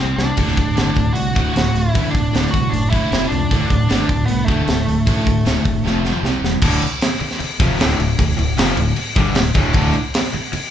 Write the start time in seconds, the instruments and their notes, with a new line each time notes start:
Already playing: overdriven electric guitar C3, lead electric guitar C4
0.00 fingered electric bass C2, overdriven electric guitar G3 C4
0.16 fingered electric bass C2, overdriven electric guitar C3 G3, lead electric guitar D4, snare
0.36 fingered electric bass D1, overdriven electric guitar D2 A2 D3, kick, open hi-hat, crash
0.48 snare
0.56 fingered electric bass D1, overdriven electric guitar D2 A2, kick, open hi-hat
0.76 fingered electric bass G1, overdriven electric guitar D2 A2 D3, snare, open hi-hat
0.94 fingered electric bass D1, overdriven electric guitar D2 A2, kick, open hi-hat
1.13 fingered electric bass C2, overdriven electric guitar D2 A2, lead electric guitar F#4, open hi-hat
1.34 fingered electric bass D1, overdriven electric guitar D2 A2 D3, kick, open hi-hat
1.53 fingered electric bass D1, overdriven electric guitar D2 A2, lead electric guitar F#4, snare, open hi-hat
1.75 fingered electric bass D1, overdriven electric guitar D2 A2, lead electric guitar E4, open hi-hat
1.93 fingered electric bass A1, overdriven electric guitar D2 A2 D3, kick, open hi-hat
2.11 fingered electric bass D1, overdriven electric guitar D2 A2, lead electric guitar D4
2.15 kick, open hi-hat
2.32 fingered electric bass D1, overdriven electric guitar D2 A2 D3, snare, open hi-hat
2.51 fingered electric bass C2, overdriven electric guitar D2 A2, lead electric guitar F#4, kick, open hi-hat
2.70 fingered electric bass F#1, overdriven electric guitar D2 A2, lead electric guitar D4, open hi-hat
2.90 overdriven electric guitar D2 A2 D3, lead electric guitar E4, kick, open hi-hat
3.11 fingered electric bass F1, overdriven electric guitar F2 C3 F3, snare, open hi-hat
3.28 fingered electric bass C#2, overdriven electric guitar F2 C3, lead electric guitar D4
3.32 open hi-hat
3.50 fingered electric bass D1, overdriven electric guitar D2 A2 D3, kick, open hi-hat
3.68 fingered electric bass D1, overdriven electric guitar D2 A2, kick, open hi-hat
3.87 fingered electric bass G1, overdriven electric guitar D2 A2 D3, snare, open hi-hat
4.09 fingered electric bass D1, overdriven electric guitar D2 A2, kick, open hi-hat
4.25 fingered electric bass C2, overdriven electric guitar D2 A2, lead electric guitar B3, open hi-hat
4.46 fingered electric bass D1, overdriven electric guitar D2 A2 D3, lead electric guitar A3, kick, open hi-hat
4.68 fingered electric bass D1, overdriven electric guitar D2 A2, snare, open hi-hat
4.87 fingered electric bass D1, overdriven electric guitar D2 A2, open hi-hat
5.06 fingered electric bass A1, overdriven electric guitar D2 A2 D3, kick, open hi-hat
5.26 fingered electric bass D1, overdriven electric guitar D2 A2, kick, open hi-hat
5.45 fingered electric bass D1, overdriven electric guitar D2 A2 D3, snare, open hi-hat
5.65 fingered electric bass F#1, overdriven electric guitar D2 A2, kick, open hi-hat
5.85 fingered electric bass F1, overdriven electric guitar F2 C3 F3, snare
6.03 overdriven electric guitar F2 C3 F3, snare
6.23 fingered electric bass C2, overdriven electric guitar C3 G3 C4, snare
6.42 fingered electric bass E1, overdriven electric guitar C3 G3, snare
6.62 fingered electric bass D1, overdriven electric guitar D2 A2 D3, kick, crash
6.82 muted fingered electric bass stroke, muted overdriven electric guitar stroke, crash
7.01 snare, crash
7.20 muted fingered electric bass stroke, muted overdriven electric guitar stroke, crash
7.31 snare
7.40 muted overdriven electric guitar stroke, muted fingered electric bass stroke, crash
7.59 fingered electric bass F1, overdriven electric guitar F2 C3 F3, kick, crash
7.78 fingered electric bass D1, overdriven electric guitar D2 A2 D3, snare, crash
7.99 fingered electric bass D1, overdriven electric guitar D2 A2, crash
8.19 fingered electric bass D1, overdriven electric guitar D2 A2, kick, crash
8.37 fingered electric bass D1, overdriven electric guitar D2 A2, crash
8.57 fingered electric bass F1, overdriven electric guitar F2 C3 F3, snare, crash
8.77 fingered electric bass D1, overdriven electric guitar D2 A2, crash
8.95 muted overdriven electric guitar stroke, muted fingered electric bass stroke, crash
9.16 fingered electric bass G1, overdriven electric guitar G2 D3 G3, kick, crash
9.35 fingered electric bass D1, overdriven electric guitar D2 A2, snare, crash
9.54 fingered electric bass D1, overdriven electric guitar D2 A2 D3, kick, crash
9.73 fingered electric bass D1, overdriven electric guitar D2 A2 D3, kick, crash
9.93 muted overdriven electric guitar stroke, muted fingered electric bass stroke, muted distorted electric guitar stroke, crash
10.14 snare, crash
10.33 muted overdriven electric guitar stroke, muted fingered electric bass stroke, muted distorted electric guitar stroke, crash
10.52 muted overdriven electric guitar stroke, muted fingered electric bass stroke, muted distorted electric guitar stroke, crash